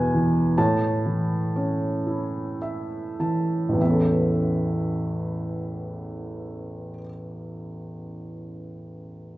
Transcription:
felt piano
Already playing: E2 B2 B4 G#5
0.15 E3
0.58 A2 C#5 A5
1.05 E3
1.56 C#4
2.07 E4
2.62 E5
3.20 E3 A5
3.69 A1
3.73 E2
3.78 E3 E5
3.82 B3 C#4
3.91 A4

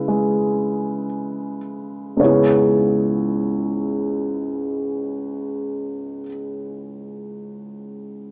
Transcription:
grand piano
Already playing: C#3 G#3 E4 B4
0.08 G#3
2.17 C#2 G#2 C#3 C#5
2.22 B3 E4 G#4

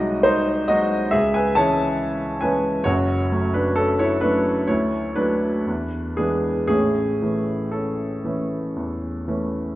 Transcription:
grand piano
Already playing: C2 F#3 G#3 D#4 F#4 D#5
0.23 D#4 C5
0.68 F#3 G#3 D#4 F#4 D#5
1.11 C#2 G#4 E5
1.34 B4 G#5
1.55 E3 G#3 C#4 C#5 A5
2.41 E3 G#3 C#4 B4 G#5
2.84 F#1 F#2 F#4 C#5
3.32 F#3 A3 C#4
3.54 D4 B4
3.76 C#4 A4
3.99 E4 C#5
4.21 F#3 A3 C#4 D4 B4
4.67 D2 E4 C#5
5.16 F#3 A3 D4 B4
5.67 E2
6.17 E3 G#3 B3 D4 G#4
6.68 A1 A2 C#4 G#4
7.22 E3 A3 C#4
7.72 C#4 A4
8.24 E3 A3 C#4
8.76 E2
9.28 E3 A3 C#4

